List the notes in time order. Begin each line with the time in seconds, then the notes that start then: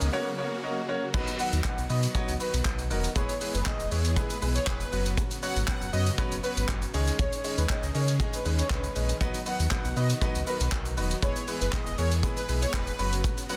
Already playing: C#3 G#3 D#4 G#4, riser
0.01 C#2, shaker
0.13 F#3 A#3 C#4 F#4 A#4 C#5
0.38 C#4 F#4 A#4 C#5
0.63 C#4 F#4 A#4 D#5
0.89 C#4 F#4 A#4 C#5
1.14 B1 D#3 F#3 B3 D#4 F#4 B4, kick, crash, shaker
1.27 closed hi-hat, shaker
1.39 F#3 B3 D#4 F#4 B4 F#5, open hi-hat, shaker
1.53 D#2, closed hi-hat, shaker
1.64 F#3 B3 D#4 F#4 B4 F#5, kick, clap, shaker
1.78 B1, closed hi-hat, shaker
1.89 B2 F#3 B3 D#4 F#4 B4 D#5, open hi-hat, shaker
2.03 closed hi-hat, shaker
2.15 F#3 B3 D#4 F#4 C#5, kick, shaker
2.28 C#2, closed hi-hat, shaker
2.40 F#3 B3 D#4 F#4 B4, open hi-hat, shaker
2.53 B1, closed hi-hat, shaker
2.65 B1 F#3 B3 D#4 F#4 B4, kick, clap, shaker
2.78 closed hi-hat, shaker
2.90 D#1 F#3 B3 D#4 F#4 A#4, open hi-hat, shaker
3.04 closed hi-hat, shaker
3.15 E1 E3 G#3 B3 E4 G#4 B4 C#5, kick, shaker
3.29 closed hi-hat, shaker
3.41 G#3 B3 E4 G#4 B4, open hi-hat, shaker
3.54 F#1 B4, closed hi-hat, shaker
3.66 G#3 B3 E4 G#4 B4 D#5, kick, clap, shaker
3.80 E1, closed hi-hat, shaker
3.91 E2 G#3 B3 E4 G#4 B4 C#5, open hi-hat, shaker
4.05 closed hi-hat, shaker
4.16 G#3 B3 E4 G#4 B4, kick, shaker
4.30 B4, closed hi-hat, shaker
4.42 B1 G#3 B3 E4 G#4 B4, open hi-hat, shaker
4.55 C#5, closed hi-hat, shaker
4.67 E1 G#3 B3 E4 G#4 B4 C#5, kick, clap, shaker
4.80 closed hi-hat, shaker
4.92 F#1 C#3 F#3 B3 C#4 F#4 B4, open hi-hat, shaker
5.06 closed hi-hat, shaker
5.17 kick, shaker
5.31 closed hi-hat, shaker
5.42 F#3 B3 C#4 F#4 C#5 F#5, open hi-hat, shaker
5.56 G#1, closed hi-hat, shaker
5.68 F#3 B3 C#4 F#4 B4 F#5, kick, clap, shaker
5.81 F#1, closed hi-hat, shaker
5.93 F#2 F#3 B3 C#4 F#4 B4 D#5, open hi-hat, shaker
6.06 closed hi-hat, shaker
6.18 F#3 B3 C#4 F#4 B4, kick, shaker
6.32 F#1, closed hi-hat, shaker
6.43 F#3 B3 C#4 F#4 B4, open hi-hat, shaker
6.57 G#1, closed hi-hat, shaker
6.68 F#1 F#3 B3 C#4 F#4 C#5, kick, clap, shaker
6.82 closed hi-hat, shaker
6.94 C#2 D#3 G#3 C#4 D#4 G#4 C#5, open hi-hat, shaker
7.07 closed hi-hat, shaker
7.19 C#2 C#5, kick, shaker
7.32 closed hi-hat, shaker
7.44 G#3 C#4 D#4 G#4 C#5, open hi-hat, shaker
7.58 D#2 B4, closed hi-hat, shaker
7.69 G#3 C#4 D#4 G#4 C#5 D#5, kick, clap, shaker
7.83 C#2, closed hi-hat, shaker
7.95 C#3 G#3 C#4 D#4 G#4 A#4 C#5, open hi-hat, shaker
8.08 closed hi-hat, shaker
8.20 G#3 C#4 D#4 G#4 D#5, kick, shaker
8.33 B4, closed hi-hat, shaker
8.45 D#2 G#3 C#4 D#4 G#4 B4, open hi-hat, shaker
8.58 C#5, closed hi-hat, shaker
8.70 C#2 G#3 C#4 D#4 G#4 B4 C#5, kick, clap, shaker
8.83 closed hi-hat, shaker
8.95 A#1 G#3 C#4 D#4 G#4 D#5, open hi-hat, shaker
9.09 closed hi-hat, shaker
9.21 B1 F#3 B3 D#4 F#4 B4, kick, shaker
9.34 closed hi-hat, shaker
9.46 F#3 B3 D#4 F#4 B4 F#5, open hi-hat, shaker
9.59 D#2, closed hi-hat, shaker
9.71 F#3 B3 D#4 F#4 B4 F#5, kick, clap, shaker
9.85 B1, closed hi-hat, shaker
9.96 B2 F#3 B3 D#4 F#4 B4 D#5, open hi-hat, shaker
10.10 closed hi-hat, shaker
10.21 F#3 B3 D#4 F#4 B4, kick, shaker
10.35 C#2, closed hi-hat, shaker
10.47 F#3 B3 D#4 F#4 A#4 B4, open hi-hat, shaker
10.60 B1, closed hi-hat, shaker
10.72 B1 F#3 B3 D#4 F#4 A#4, kick, clap, shaker
10.85 closed hi-hat, shaker
10.97 D#1 F#3 B3 D#4 F#4 B4, open hi-hat, shaker
11.11 closed hi-hat, shaker
11.22 E1 G#3 B3 E4 G#4 B4 C#5, kick, shaker
11.36 closed hi-hat, shaker
11.48 G#3 B3 E4 G#4 B4, open hi-hat, shaker
11.61 F#1 B4, closed hi-hat, shaker
11.73 G#3 B3 E4 G#4 B4 D#5, kick, clap, shaker
11.86 E1, closed hi-hat, shaker
11.98 E2 G#3 B3 E4 G#4 A#4 C#5, open hi-hat, shaker
12.11 closed hi-hat, shaker
12.23 G#3 B3 E4 G#4 B4, kick, shaker
12.37 B4, closed hi-hat, shaker
12.48 B1 G#3 B3 E4 G#4 B4, open hi-hat, shaker
12.62 C#5, closed hi-hat, shaker
12.73 E1 G#3 B3 E4 G#4 B4, kick, clap, shaker
12.87 closed hi-hat, shaker
12.99 F#1 C#3 F#3 B3 C#4 F#4 B4, open hi-hat, shaker
13.12 closed hi-hat, shaker
13.24 kick, shaker
13.37 closed hi-hat, shaker
13.49 F#3 B3 C#4 F#4 B4 F#5, open hi-hat, shaker